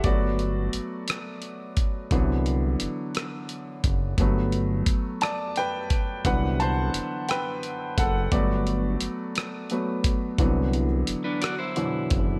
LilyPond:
<<
  \new Staff \with { instrumentName = "Clean electric guitar" } { \time 6/8 \key g \major \tempo 4. = 58 r2. | r2. | r2. | r2. |
r2. | r4 r16 <d' b'>16 <fis' d''>16 <e' c''>4~ <e' c''>16 | }
  \new Staff \with { instrumentName = "Grand piano" } { \time 6/8 \key g \major <fis' d''>4. r4. | r2. | r4. <d'' a''>8 <b' g''>4 | <b' fis''>8 <c'' a''>4 <b' g''>4 <a' fis''>8 |
<fis' d''>2 r4 | r2. | }
  \new Staff \with { instrumentName = "Grand piano" } { \clef bass \time 6/8 \key g \major <fis a b>2. | <d e fis b>4. r4. | <fis a b>2. | <d e fis b>8 r2 r8 |
<fis a b>4. r8 <fis a b>8 r8 | <d e fis b>8 r4. <b, d e fis>8 r8 | }
  \new Staff \with { instrumentName = "Analog synth bass" } { \clef bass \time 6/8 \key g \major g,,4 g,,8 r4. | c,4 fis,,8 r4 fis,,8 | g,,4 g,,8 r4. | c,4 fis,,8 r4 fis,,8 |
g,,4 g,,8 r4. | c,4 fis,,8 r4 fis,,8 | }
  \new DrumStaff \with { instrumentName = "Drums" } \drummode { \time 6/8 <hh bd>8 hh8 hh8 <hh ss>8 hh8 <hh bd>8 | <hh bd>8 hh8 hh8 <hh ss>8 hh8 <hh bd>8 | <hh bd>8 hh8 <hh bd>8 <hh ss>8 hh8 <hh bd>8 | <hh bd>8 hh8 hh8 <hh ss>8 hh8 <hh bd>8 |
<hh bd>8 hh8 hh8 <hh ss>8 hh8 <hh bd>8 | <hh bd>8 hh8 hh8 <hh ss>8 hh8 <hh bd>8 | }
>>